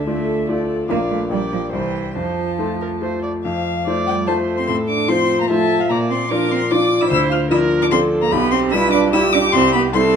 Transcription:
Already playing: D2 E5
0.07 A3 F4 A4 D5
0.47 A3 F4 A4 D5
0.89 A#1 A#3 F4 D5 F5
1.11 A3
1.30 A#1 G3 A#3 G4 D5 G5
1.53 F3
1.72 C2 E3 G3 G4 C5 G5
2.15 F2 F3 C5 A5
2.59 A3 F4 A4 C5
2.81 A#4
3.02 A3 F4 C5
3.23 D5
3.44 F2 F3 F5
3.87 A3 F4 C5 D5
4.07 G3 G5
4.27 A3 F4 C5 A5
4.57 C4 C6
4.67 A2 C4 A4 C6
4.88 D4 D6
5.08 F3 C4 F4 C5 C6
5.40 A#3 A#5
5.50 F3 A3 F4 C5 E5 A5
5.80 F3 F5
5.89 A#2 A#3 D5 A#5
6.10 C4 C6
6.29 F3 D4 F4 A#4 D5 D6
6.51 C4 C6
6.71 F3 D4 F4 D5 D6
7.00 E4 E6
7.11 D2 E4 C5 E6
7.31 F4 F6
7.51 F3 E4 F4 A#4 D5 E6
7.81 D4 D6
7.91 F3 C4 F4 A4 D5 C6
8.21 A#3 A#5
8.31 B1 B3 G4 B5
8.51 C4 C6
8.71 G3 E4 F4 B4 D5 E6
8.91 D4 D6
9.13 G3 E4 F4 G4 D5 E6
9.33 D4 D6
9.52 C2 C4 C6
9.73 B3 B5
9.93 G3 C4 E4 A4 C5 C6

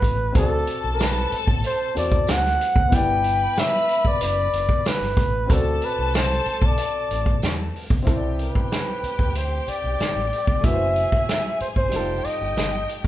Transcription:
Already playing: G3 E4 F#4 B4 D5
0.02 A1, kick, closed hi-hat
0.32 D2 C4 F#4 A4 A5, kick, closed hi-hat
0.37 A4 D5
0.67 closed hi-hat
0.84 B1
0.95 A#4, tambourine
1.00 B4, snare, closed hi-hat
1.32 muted fingered electric bass stroke, closed hi-hat
1.47 A1, kick
1.64 C5, closed hi-hat
1.95 E2 C4 F#4 A4 D5, closed hi-hat
2.12 kick
2.27 D2 F#5, snare, closed hi-hat, tambourine
2.45 snare
2.61 closed hi-hat
2.76 D2, kick
2.89 G1 B3 E4 B4 B5, kick, closed hi-hat
2.93 G4 D5 G5
3.24 closed hi-hat
3.56 E5, snare, closed hi-hat, tambourine
3.89 closed hi-hat
4.05 D5, kick
4.21 F#1 D5, closed hi-hat
4.53 F#1, closed hi-hat
4.69 kick
4.85 B4, snare, closed hi-hat, tambourine
5.02 G1, snare
5.17 A1, kick, closed hi-hat
5.46 D2 C4 F#4 A4 A5, kick, closed hi-hat
5.50 A4 D5
5.82 B4, closed hi-hat
5.99 C2
6.14 C5, snare, closed hi-hat, tambourine
6.46 muted fingered electric bass stroke, closed hi-hat
6.62 B1, kick
6.66 D5
6.78 closed hi-hat
7.11 A1, closed hi-hat
7.26 kick
7.42 E2, snare, closed hi-hat, tambourine
7.76 open hi-hat
7.90 G1, kick
8.03 C4 E4 G4 G5
8.07 C2 A4 C5, kick, closed hi-hat
8.16 D5
8.39 B4, closed hi-hat
8.55 muted fingered electric bass stroke, kick
8.72 snare, closed hi-hat
9.03 muted fingered electric bass stroke, closed hi-hat
9.19 D2, kick
9.35 C5, closed hi-hat
9.68 D5, muted fingered electric bass stroke, closed hi-hat
9.84 B1
10.00 muted fingered electric bass stroke, snare, closed hi-hat
10.16 A1
10.33 closed hi-hat
10.47 G1, kick
10.61 F#1 A3 E4 G#4 E5 G#5, kick, closed hi-hat
10.65 F#4 B4
10.74 C5
10.96 closed hi-hat
11.12 muted fingered electric bass stroke, kick
11.29 snare, closed hi-hat
11.60 C5, muted fingered electric bass stroke, closed hi-hat
11.76 G#1 C5, kick
11.89 F1 G3 D#4 G4 G5, closed hi-hat
11.93 F4 A4
12.25 D#5, muted fingered electric bass stroke, closed hi-hat
12.41 G1
12.57 G1, snare, closed hi-hat
12.89 closed hi-hat

